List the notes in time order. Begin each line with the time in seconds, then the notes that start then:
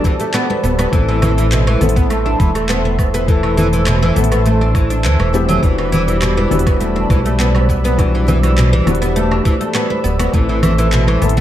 Already playing: E3 G3 B3 D4 F#4 D5 A5 E6
0.04 E3, kick, open hi-hat, muted conga, shaker
0.20 A3, open hi-hat, shaker
0.34 B3, clap, open hi-hat, low woodblock, shaker
0.50 B3, muted conga
0.64 D1 B3, shaker
0.79 B3, open hi-hat, muted conga, low woodblock, shaker
0.91 A1 E3 A3 C4 E4 A4 E5 C6 E6, kick, open hi-hat, shaker
0.95 A4
1.08 E3
1.22 E3, open hi-hat, low conga, low woodblock, shaker
1.38 E3, open hi-hat, shaker
1.52 B2, clap, open hi-hat, shaker
1.67 E3, high conga, low woodblock
1.79 A1 E3 A3 B3 E4, open hi-hat, low conga, shaker
1.83 A4
1.89 open hi-hat
1.96 B3, kick, open hi-hat, shaker
2.10 A3, open hi-hat, low woodblock, shaker
2.26 D4, muted conga
2.40 E1 E3, kick, open hi-hat, high conga, shaker
2.55 A3, open hi-hat, low woodblock, shaker
2.69 B3, clap, open hi-hat, shaker
2.85 B3
2.99 B3, kick, low woodblock, shaker
3.14 B3, open hi-hat, shaker
3.26 E3 A3 E4, kick, open hi-hat, shaker
3.30 A4
3.43 E3, low woodblock
3.57 E3, open hi-hat, muted conga, low conga, shaker
3.73 E3, open hi-hat, high conga, shaker
3.87 B2, clap, open hi-hat, low woodblock, shaker
4.03 E3
4.14 A1 E3 A3 B3 E4, open hi-hat, low conga, shaker
4.18 A4
4.24 open hi-hat
4.32 B3, open hi-hat, low woodblock, shaker
4.46 A3, open hi-hat, shaker
4.61 D4
4.75 E3, kick, open hi-hat, muted conga, low woodblock, shaker
4.90 D4, open hi-hat, shaker
5.04 D2 E3, clap, open hi-hat, shaker
5.20 E1 E3, muted conga, low woodblock
5.33 E3 A3 B3 C4 E4 G4, high conga, shaker
5.49 F#3, open hi-hat, muted conga, low conga, shaker
5.61 E1 E3 G3 B3 D4 F#4 D5 B5, kick, open hi-hat, shaker
5.78 E3, low woodblock
5.92 E3, open hi-hat, low conga, shaker
6.08 E3, open hi-hat, shaker
6.22 B2, clap, open hi-hat, low woodblock, shaker
6.37 E3, high conga
6.50 E1 E3 G3 B3 D4, open hi-hat, low conga, shaker
6.54 F#4
6.59 open hi-hat
6.67 B3, kick, open hi-hat, low woodblock, shaker
6.81 A3, open hi-hat, shaker
6.96 D4, muted conga
7.10 B1 E3, kick, open hi-hat, high conga, low woodblock, shaker
7.26 A3, open hi-hat, shaker
7.40 B3, clap, open hi-hat, shaker
7.55 B3, low woodblock
7.69 B3, kick, shaker
7.85 B3, open hi-hat, shaker
7.97 E3 G3 B3 D4, kick, open hi-hat, low woodblock, shaker
8.01 F#4
8.15 E3
8.27 E3, open hi-hat, muted conga, low conga, shaker
8.43 E3, open hi-hat, high conga, low woodblock, shaker
8.58 B2, clap, open hi-hat, shaker
8.73 E3
8.85 E1 E3 G3 B3 D4 F#4, open hi-hat, low conga, low woodblock, shaker
8.95 open hi-hat
9.02 B3, open hi-hat, shaker
9.16 A3, open hi-hat, shaker
9.31 D4, low woodblock
9.45 E3, kick, open hi-hat, muted conga, shaker
9.61 A3, open hi-hat, shaker
9.75 B3, clap, open hi-hat, low woodblock, shaker
9.90 B3, muted conga
10.04 D1 B3, shaker
10.19 B3, open hi-hat, muted conga, low woodblock, shaker
10.32 A1 E3 A3 C4 E4 A4 E5 C6, kick, open hi-hat, shaker
10.36 A4
10.49 E3
10.63 E3, open hi-hat, low conga, low woodblock, shaker
10.78 E3, open hi-hat, shaker
10.92 B2, clap, open hi-hat, shaker
11.07 E3, high conga, low woodblock
11.20 A1 E3 A3 B3 E4 A4, open hi-hat, low conga, shaker
11.29 open hi-hat
11.37 B3, kick, open hi-hat